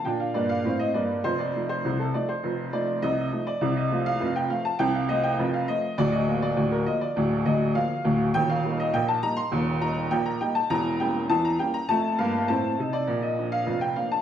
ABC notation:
X:1
M:2/4
L:1/16
Q:1/4=101
K:Bb
V:1 name="Upright piano"
g f d f2 e d2 | c d2 c2 A d c- | c2 d2 e3 d- | d e2 f2 g f a |
g f e g2 f e2 | d e2 d2 B e d- | d2 e2 f3 z | g f2 e g a b c'- |
c'2 b2 g b g a | b2 g2 a b g b | a2 f2 a3 d- | d e2 f2 g f a |]
V:2 name="Upright piano" clef=bass
[B,,D]2 [G,,B,]2 [A,,C]2 [G,,B,]2 | [F,,,F,,]2 [F,A,E]2 [C,,C,]2 [F,A,E]2 | [F,,,F,,]2 [F,A,E]2 [C,,C,]2 [F,A,E]2 | [C,,C,]2 [F,A,F]2 [F,,,F,,]2 [F,A,F]2 |
[C,,C,]2 [F,A,F]2 [F,,,F,,]2 [F,A,F]2 | [D,,,D,,]2 [F,B,F]2 [D,,,D,,]2 [F,B,F]2 | [D,,,D,,]2 [D,,,D,,]2 [F,B,F]2 [D,,,D,,]2 | [E,,,E,,]2 [G,B,E]2 [B,,,B,,]2 [G,B,E]2 |
[E,,,E,,]2 [G,B,E]2 [B,,,B,,]2 [G,B,E]2 | [=E,,,=E,,]2 [G,B,^C]2 [E,,=E,]2 [G,B,C]2 | [F,,A,]2 [G,,B,]2 [A,,C]2 [C,E]2 | [B,,,B,,]2 [F,B,D]2 [F,,,F,,]2 [F,B,D]2 |]